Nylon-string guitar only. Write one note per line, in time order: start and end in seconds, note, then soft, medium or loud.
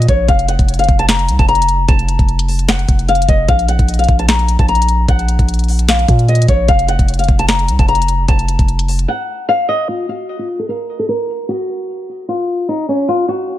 0.09 0.27 C#5 medium
0.28 0.47 F5 loud
0.48 0.77 F#5 medium
0.79 0.98 F5 medium
0.99 1.08 A5 medium
1.39 1.48 A5 medium
1.49 1.86 A#5 medium
1.88 2.64 A5 loud
2.68 3.06 F#5 medium
3.09 3.27 F5 medium
3.29 3.47 D#5 medium
3.49 3.67 F5 loud
3.69 3.97 F#5 medium
3.99 4.18 F5 medium
4.19 4.28 A5 medium
4.29 4.57 A#5 medium
4.59 4.68 A5 medium
4.69 5.06 A#5 medium
5.09 5.85 F#5 medium
5.89 6.26 F5 medium
6.29 6.47 D#5 medium
6.49 6.67 C#5 medium
6.68 6.87 F5 loud
6.88 7.17 F#5 medium
7.19 7.38 F5 medium
7.39 7.48 A5 medium
7.49 7.77 A#5 medium
7.79 7.88 A5 medium
7.88 8.26 A#5 medium
8.28 9.04 A5 loud
9.08 9.46 F#5 medium
9.49 9.67 F5 medium
9.69 9.87 D#5 medium
9.89 10.07 F4 loud
10.09 10.37 F#4 medium
10.39 10.58 F4 medium
10.59 10.68 A4 medium
10.69 10.97 A#4 medium
10.99 11.08 A4 medium
11.09 11.46 A#4 medium
11.49 12.25 F#4 medium
12.29 12.66 F4 medium
12.69 12.87 D#4 medium
12.89 13.07 C#4 medium
13.08 13.27 F4 loud
13.28 13.57 F#4 medium